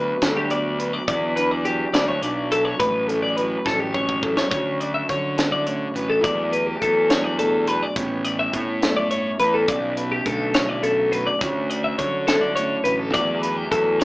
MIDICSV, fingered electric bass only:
0, 0, Header, 1, 2, 480
1, 0, Start_track
1, 0, Key_signature, 2, "major"
1, 0, Tempo, 574163
1, 903, Time_signature, 6, 3, 24, 8
1, 11737, End_track
2, 0, Start_track
2, 0, Title_t, "Fingered electric bass"
2, 0, Program_c, 0, 33
2, 0, Note_on_c, 0, 38, 100
2, 95, Note_off_c, 0, 38, 0
2, 180, Note_on_c, 0, 38, 89
2, 811, Note_off_c, 0, 38, 0
2, 902, Note_on_c, 0, 40, 98
2, 1532, Note_off_c, 0, 40, 0
2, 1613, Note_on_c, 0, 38, 89
2, 1827, Note_off_c, 0, 38, 0
2, 1851, Note_on_c, 0, 35, 79
2, 2276, Note_off_c, 0, 35, 0
2, 2339, Note_on_c, 0, 33, 96
2, 2970, Note_off_c, 0, 33, 0
2, 3057, Note_on_c, 0, 33, 87
2, 3689, Note_off_c, 0, 33, 0
2, 3769, Note_on_c, 0, 38, 93
2, 4194, Note_off_c, 0, 38, 0
2, 4257, Note_on_c, 0, 50, 76
2, 4890, Note_off_c, 0, 50, 0
2, 4965, Note_on_c, 0, 33, 82
2, 5182, Note_off_c, 0, 33, 0
2, 5216, Note_on_c, 0, 40, 102
2, 5639, Note_off_c, 0, 40, 0
2, 5699, Note_on_c, 0, 40, 80
2, 6541, Note_off_c, 0, 40, 0
2, 6653, Note_on_c, 0, 33, 98
2, 7078, Note_off_c, 0, 33, 0
2, 7134, Note_on_c, 0, 45, 78
2, 7769, Note_off_c, 0, 45, 0
2, 7855, Note_on_c, 0, 40, 85
2, 8069, Note_off_c, 0, 40, 0
2, 8093, Note_on_c, 0, 35, 103
2, 8519, Note_off_c, 0, 35, 0
2, 8578, Note_on_c, 0, 35, 79
2, 9423, Note_off_c, 0, 35, 0
2, 9540, Note_on_c, 0, 38, 98
2, 9963, Note_off_c, 0, 38, 0
2, 10018, Note_on_c, 0, 50, 83
2, 10653, Note_off_c, 0, 50, 0
2, 10743, Note_on_c, 0, 33, 86
2, 10955, Note_off_c, 0, 33, 0
2, 10980, Note_on_c, 0, 40, 107
2, 11404, Note_off_c, 0, 40, 0
2, 11471, Note_on_c, 0, 40, 82
2, 11737, Note_off_c, 0, 40, 0
2, 11737, End_track
0, 0, End_of_file